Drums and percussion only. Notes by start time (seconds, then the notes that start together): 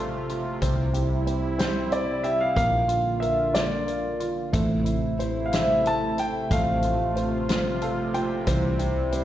0.29 closed hi-hat
0.62 kick, closed hi-hat
0.94 closed hi-hat
1.27 closed hi-hat
1.59 snare, closed hi-hat
1.92 closed hi-hat
2.24 closed hi-hat
2.57 kick, closed hi-hat
2.89 closed hi-hat
3.22 closed hi-hat
3.55 snare, closed hi-hat
3.88 closed hi-hat
4.20 closed hi-hat
4.54 kick, closed hi-hat
4.86 closed hi-hat
5.20 closed hi-hat
5.53 snare, closed hi-hat
5.86 closed hi-hat
6.18 closed hi-hat
6.51 kick, closed hi-hat
6.83 closed hi-hat
7.17 closed hi-hat
7.49 snare, closed hi-hat
7.82 closed hi-hat
8.14 closed hi-hat
8.47 kick, closed hi-hat
8.79 closed hi-hat
9.12 closed hi-hat